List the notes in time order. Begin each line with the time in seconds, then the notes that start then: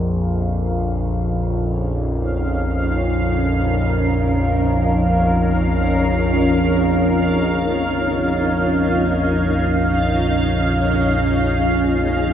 Already playing: A#1 F2
0.00 C#4 F5
0.23 D#4
1.34 F4
1.85 A#4
10.09 G#4